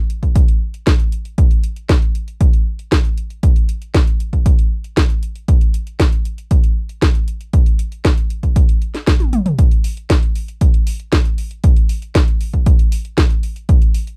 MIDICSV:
0, 0, Header, 1, 2, 480
1, 0, Start_track
1, 0, Tempo, 512821
1, 1293, Time_signature, 4, 2, 24, 8
1, 13261, End_track
2, 0, Start_track
2, 0, Title_t, "Drums"
2, 92, Note_on_c, 9, 42, 62
2, 186, Note_off_c, 9, 42, 0
2, 212, Note_on_c, 9, 36, 61
2, 213, Note_on_c, 9, 42, 36
2, 306, Note_off_c, 9, 36, 0
2, 306, Note_off_c, 9, 42, 0
2, 332, Note_on_c, 9, 36, 113
2, 332, Note_on_c, 9, 42, 88
2, 426, Note_off_c, 9, 36, 0
2, 426, Note_off_c, 9, 42, 0
2, 453, Note_on_c, 9, 42, 35
2, 546, Note_off_c, 9, 42, 0
2, 693, Note_on_c, 9, 42, 36
2, 786, Note_off_c, 9, 42, 0
2, 812, Note_on_c, 9, 36, 119
2, 812, Note_on_c, 9, 38, 109
2, 812, Note_on_c, 9, 42, 83
2, 905, Note_off_c, 9, 38, 0
2, 905, Note_off_c, 9, 42, 0
2, 906, Note_off_c, 9, 36, 0
2, 932, Note_on_c, 9, 42, 37
2, 1026, Note_off_c, 9, 42, 0
2, 1051, Note_on_c, 9, 42, 60
2, 1145, Note_off_c, 9, 42, 0
2, 1172, Note_on_c, 9, 42, 37
2, 1265, Note_off_c, 9, 42, 0
2, 1292, Note_on_c, 9, 36, 111
2, 1292, Note_on_c, 9, 42, 84
2, 1386, Note_off_c, 9, 36, 0
2, 1386, Note_off_c, 9, 42, 0
2, 1412, Note_on_c, 9, 42, 34
2, 1505, Note_off_c, 9, 42, 0
2, 1531, Note_on_c, 9, 42, 60
2, 1624, Note_off_c, 9, 42, 0
2, 1651, Note_on_c, 9, 42, 36
2, 1744, Note_off_c, 9, 42, 0
2, 1772, Note_on_c, 9, 36, 114
2, 1772, Note_on_c, 9, 38, 108
2, 1772, Note_on_c, 9, 42, 81
2, 1865, Note_off_c, 9, 38, 0
2, 1865, Note_off_c, 9, 42, 0
2, 1866, Note_off_c, 9, 36, 0
2, 1892, Note_on_c, 9, 42, 34
2, 1986, Note_off_c, 9, 42, 0
2, 2012, Note_on_c, 9, 42, 61
2, 2106, Note_off_c, 9, 42, 0
2, 2132, Note_on_c, 9, 42, 36
2, 2226, Note_off_c, 9, 42, 0
2, 2252, Note_on_c, 9, 36, 109
2, 2252, Note_on_c, 9, 42, 81
2, 2345, Note_off_c, 9, 42, 0
2, 2346, Note_off_c, 9, 36, 0
2, 2372, Note_on_c, 9, 42, 34
2, 2466, Note_off_c, 9, 42, 0
2, 2612, Note_on_c, 9, 42, 35
2, 2706, Note_off_c, 9, 42, 0
2, 2732, Note_on_c, 9, 36, 108
2, 2732, Note_on_c, 9, 38, 110
2, 2732, Note_on_c, 9, 42, 84
2, 2826, Note_off_c, 9, 36, 0
2, 2826, Note_off_c, 9, 38, 0
2, 2826, Note_off_c, 9, 42, 0
2, 2853, Note_on_c, 9, 42, 38
2, 2946, Note_off_c, 9, 42, 0
2, 2972, Note_on_c, 9, 42, 61
2, 3066, Note_off_c, 9, 42, 0
2, 3092, Note_on_c, 9, 42, 34
2, 3186, Note_off_c, 9, 42, 0
2, 3212, Note_on_c, 9, 36, 109
2, 3212, Note_on_c, 9, 42, 90
2, 3305, Note_off_c, 9, 42, 0
2, 3306, Note_off_c, 9, 36, 0
2, 3333, Note_on_c, 9, 42, 36
2, 3426, Note_off_c, 9, 42, 0
2, 3453, Note_on_c, 9, 42, 63
2, 3546, Note_off_c, 9, 42, 0
2, 3573, Note_on_c, 9, 42, 35
2, 3666, Note_off_c, 9, 42, 0
2, 3692, Note_on_c, 9, 36, 109
2, 3692, Note_on_c, 9, 38, 102
2, 3692, Note_on_c, 9, 42, 81
2, 3786, Note_off_c, 9, 36, 0
2, 3786, Note_off_c, 9, 38, 0
2, 3786, Note_off_c, 9, 42, 0
2, 3813, Note_on_c, 9, 42, 37
2, 3907, Note_off_c, 9, 42, 0
2, 3933, Note_on_c, 9, 42, 60
2, 4027, Note_off_c, 9, 42, 0
2, 4052, Note_on_c, 9, 36, 57
2, 4053, Note_on_c, 9, 42, 36
2, 4146, Note_off_c, 9, 36, 0
2, 4147, Note_off_c, 9, 42, 0
2, 4172, Note_on_c, 9, 36, 100
2, 4173, Note_on_c, 9, 42, 85
2, 4266, Note_off_c, 9, 36, 0
2, 4266, Note_off_c, 9, 42, 0
2, 4293, Note_on_c, 9, 42, 35
2, 4387, Note_off_c, 9, 42, 0
2, 4533, Note_on_c, 9, 42, 34
2, 4627, Note_off_c, 9, 42, 0
2, 4652, Note_on_c, 9, 36, 103
2, 4652, Note_on_c, 9, 38, 110
2, 4652, Note_on_c, 9, 42, 84
2, 4746, Note_off_c, 9, 36, 0
2, 4746, Note_off_c, 9, 38, 0
2, 4746, Note_off_c, 9, 42, 0
2, 4773, Note_on_c, 9, 42, 37
2, 4866, Note_off_c, 9, 42, 0
2, 4892, Note_on_c, 9, 42, 60
2, 4986, Note_off_c, 9, 42, 0
2, 5012, Note_on_c, 9, 42, 35
2, 5106, Note_off_c, 9, 42, 0
2, 5132, Note_on_c, 9, 36, 106
2, 5132, Note_on_c, 9, 42, 91
2, 5226, Note_off_c, 9, 36, 0
2, 5226, Note_off_c, 9, 42, 0
2, 5253, Note_on_c, 9, 42, 34
2, 5346, Note_off_c, 9, 42, 0
2, 5373, Note_on_c, 9, 42, 60
2, 5467, Note_off_c, 9, 42, 0
2, 5493, Note_on_c, 9, 42, 36
2, 5586, Note_off_c, 9, 42, 0
2, 5613, Note_on_c, 9, 36, 105
2, 5613, Note_on_c, 9, 38, 103
2, 5613, Note_on_c, 9, 42, 81
2, 5706, Note_off_c, 9, 36, 0
2, 5706, Note_off_c, 9, 38, 0
2, 5706, Note_off_c, 9, 42, 0
2, 5733, Note_on_c, 9, 42, 37
2, 5827, Note_off_c, 9, 42, 0
2, 5853, Note_on_c, 9, 42, 60
2, 5947, Note_off_c, 9, 42, 0
2, 5973, Note_on_c, 9, 42, 36
2, 6066, Note_off_c, 9, 42, 0
2, 6092, Note_on_c, 9, 36, 101
2, 6092, Note_on_c, 9, 42, 81
2, 6185, Note_off_c, 9, 42, 0
2, 6186, Note_off_c, 9, 36, 0
2, 6211, Note_on_c, 9, 42, 35
2, 6305, Note_off_c, 9, 42, 0
2, 6452, Note_on_c, 9, 42, 37
2, 6546, Note_off_c, 9, 42, 0
2, 6572, Note_on_c, 9, 36, 105
2, 6573, Note_on_c, 9, 38, 101
2, 6573, Note_on_c, 9, 42, 84
2, 6666, Note_off_c, 9, 36, 0
2, 6666, Note_off_c, 9, 38, 0
2, 6666, Note_off_c, 9, 42, 0
2, 6693, Note_on_c, 9, 42, 38
2, 6786, Note_off_c, 9, 42, 0
2, 6812, Note_on_c, 9, 42, 61
2, 6905, Note_off_c, 9, 42, 0
2, 6932, Note_on_c, 9, 42, 36
2, 7026, Note_off_c, 9, 42, 0
2, 7052, Note_on_c, 9, 36, 103
2, 7052, Note_on_c, 9, 42, 89
2, 7145, Note_off_c, 9, 42, 0
2, 7146, Note_off_c, 9, 36, 0
2, 7172, Note_on_c, 9, 42, 38
2, 7265, Note_off_c, 9, 42, 0
2, 7292, Note_on_c, 9, 42, 65
2, 7386, Note_off_c, 9, 42, 0
2, 7413, Note_on_c, 9, 42, 38
2, 7506, Note_off_c, 9, 42, 0
2, 7532, Note_on_c, 9, 36, 106
2, 7532, Note_on_c, 9, 38, 106
2, 7532, Note_on_c, 9, 42, 88
2, 7625, Note_off_c, 9, 38, 0
2, 7625, Note_off_c, 9, 42, 0
2, 7626, Note_off_c, 9, 36, 0
2, 7653, Note_on_c, 9, 42, 39
2, 7746, Note_off_c, 9, 42, 0
2, 7772, Note_on_c, 9, 42, 65
2, 7865, Note_off_c, 9, 42, 0
2, 7892, Note_on_c, 9, 36, 55
2, 7892, Note_on_c, 9, 42, 38
2, 7986, Note_off_c, 9, 36, 0
2, 7986, Note_off_c, 9, 42, 0
2, 8012, Note_on_c, 9, 36, 104
2, 8012, Note_on_c, 9, 42, 88
2, 8106, Note_off_c, 9, 36, 0
2, 8106, Note_off_c, 9, 42, 0
2, 8133, Note_on_c, 9, 42, 39
2, 8226, Note_off_c, 9, 42, 0
2, 8253, Note_on_c, 9, 42, 35
2, 8346, Note_off_c, 9, 42, 0
2, 8372, Note_on_c, 9, 38, 32
2, 8372, Note_on_c, 9, 42, 37
2, 8466, Note_off_c, 9, 38, 0
2, 8466, Note_off_c, 9, 42, 0
2, 8492, Note_on_c, 9, 38, 105
2, 8492, Note_on_c, 9, 42, 89
2, 8493, Note_on_c, 9, 36, 104
2, 8585, Note_off_c, 9, 38, 0
2, 8585, Note_off_c, 9, 42, 0
2, 8586, Note_off_c, 9, 36, 0
2, 8612, Note_on_c, 9, 42, 39
2, 8612, Note_on_c, 9, 48, 50
2, 8706, Note_off_c, 9, 42, 0
2, 8706, Note_off_c, 9, 48, 0
2, 8732, Note_on_c, 9, 42, 65
2, 8732, Note_on_c, 9, 47, 75
2, 8826, Note_off_c, 9, 42, 0
2, 8826, Note_off_c, 9, 47, 0
2, 8852, Note_on_c, 9, 42, 37
2, 8852, Note_on_c, 9, 45, 77
2, 8946, Note_off_c, 9, 42, 0
2, 8946, Note_off_c, 9, 45, 0
2, 8972, Note_on_c, 9, 42, 94
2, 8973, Note_on_c, 9, 36, 107
2, 9066, Note_off_c, 9, 36, 0
2, 9066, Note_off_c, 9, 42, 0
2, 9093, Note_on_c, 9, 42, 38
2, 9186, Note_off_c, 9, 42, 0
2, 9212, Note_on_c, 9, 46, 105
2, 9306, Note_off_c, 9, 46, 0
2, 9333, Note_on_c, 9, 42, 39
2, 9427, Note_off_c, 9, 42, 0
2, 9453, Note_on_c, 9, 36, 107
2, 9453, Note_on_c, 9, 38, 110
2, 9453, Note_on_c, 9, 42, 93
2, 9546, Note_off_c, 9, 36, 0
2, 9546, Note_off_c, 9, 38, 0
2, 9546, Note_off_c, 9, 42, 0
2, 9572, Note_on_c, 9, 42, 38
2, 9666, Note_off_c, 9, 42, 0
2, 9692, Note_on_c, 9, 46, 94
2, 9786, Note_off_c, 9, 46, 0
2, 9812, Note_on_c, 9, 42, 40
2, 9906, Note_off_c, 9, 42, 0
2, 9932, Note_on_c, 9, 42, 91
2, 9933, Note_on_c, 9, 36, 109
2, 10026, Note_off_c, 9, 36, 0
2, 10026, Note_off_c, 9, 42, 0
2, 10053, Note_on_c, 9, 42, 38
2, 10146, Note_off_c, 9, 42, 0
2, 10172, Note_on_c, 9, 46, 106
2, 10266, Note_off_c, 9, 46, 0
2, 10293, Note_on_c, 9, 42, 38
2, 10386, Note_off_c, 9, 42, 0
2, 10413, Note_on_c, 9, 36, 106
2, 10413, Note_on_c, 9, 38, 110
2, 10413, Note_on_c, 9, 42, 89
2, 10506, Note_off_c, 9, 36, 0
2, 10506, Note_off_c, 9, 38, 0
2, 10506, Note_off_c, 9, 42, 0
2, 10533, Note_on_c, 9, 42, 38
2, 10626, Note_off_c, 9, 42, 0
2, 10652, Note_on_c, 9, 46, 89
2, 10745, Note_off_c, 9, 46, 0
2, 10772, Note_on_c, 9, 42, 40
2, 10865, Note_off_c, 9, 42, 0
2, 10891, Note_on_c, 9, 42, 99
2, 10893, Note_on_c, 9, 36, 123
2, 10985, Note_off_c, 9, 42, 0
2, 10987, Note_off_c, 9, 36, 0
2, 11011, Note_on_c, 9, 42, 37
2, 11105, Note_off_c, 9, 42, 0
2, 11132, Note_on_c, 9, 46, 101
2, 11225, Note_off_c, 9, 46, 0
2, 11252, Note_on_c, 9, 42, 41
2, 11345, Note_off_c, 9, 42, 0
2, 11372, Note_on_c, 9, 38, 115
2, 11372, Note_on_c, 9, 42, 94
2, 11373, Note_on_c, 9, 36, 119
2, 11466, Note_off_c, 9, 36, 0
2, 11466, Note_off_c, 9, 38, 0
2, 11466, Note_off_c, 9, 42, 0
2, 11492, Note_on_c, 9, 42, 37
2, 11586, Note_off_c, 9, 42, 0
2, 11612, Note_on_c, 9, 46, 88
2, 11706, Note_off_c, 9, 46, 0
2, 11733, Note_on_c, 9, 36, 61
2, 11733, Note_on_c, 9, 42, 40
2, 11826, Note_off_c, 9, 42, 0
2, 11827, Note_off_c, 9, 36, 0
2, 11852, Note_on_c, 9, 42, 92
2, 11853, Note_on_c, 9, 36, 112
2, 11946, Note_off_c, 9, 42, 0
2, 11947, Note_off_c, 9, 36, 0
2, 11973, Note_on_c, 9, 42, 40
2, 12067, Note_off_c, 9, 42, 0
2, 12093, Note_on_c, 9, 46, 105
2, 12187, Note_off_c, 9, 46, 0
2, 12213, Note_on_c, 9, 42, 39
2, 12307, Note_off_c, 9, 42, 0
2, 12333, Note_on_c, 9, 36, 119
2, 12333, Note_on_c, 9, 38, 113
2, 12333, Note_on_c, 9, 42, 91
2, 12427, Note_off_c, 9, 36, 0
2, 12427, Note_off_c, 9, 38, 0
2, 12427, Note_off_c, 9, 42, 0
2, 12453, Note_on_c, 9, 42, 41
2, 12546, Note_off_c, 9, 42, 0
2, 12572, Note_on_c, 9, 46, 91
2, 12666, Note_off_c, 9, 46, 0
2, 12693, Note_on_c, 9, 42, 39
2, 12786, Note_off_c, 9, 42, 0
2, 12813, Note_on_c, 9, 36, 119
2, 12813, Note_on_c, 9, 42, 94
2, 12906, Note_off_c, 9, 42, 0
2, 12907, Note_off_c, 9, 36, 0
2, 12933, Note_on_c, 9, 42, 37
2, 13026, Note_off_c, 9, 42, 0
2, 13052, Note_on_c, 9, 46, 99
2, 13146, Note_off_c, 9, 46, 0
2, 13172, Note_on_c, 9, 42, 40
2, 13261, Note_off_c, 9, 42, 0
2, 13261, End_track
0, 0, End_of_file